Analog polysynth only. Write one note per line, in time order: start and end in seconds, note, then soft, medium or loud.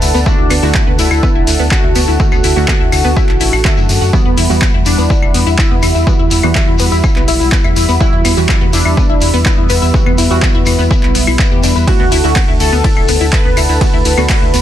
0.00 0.17 B4 loud
0.26 0.89 D4 loud
0.99 1.62 E4 loud
1.71 4.04 F#4 loud
4.13 4.76 B3 loud
4.86 5.49 D4 loud
5.58 7.91 E4 loud
8.01 8.64 E4 loud
8.73 9.36 D4 loud
9.46 11.78 B3 loud
11.87 12.51 F#4 loud
12.60 13.23 A4 loud
13.33 14.62 B4 loud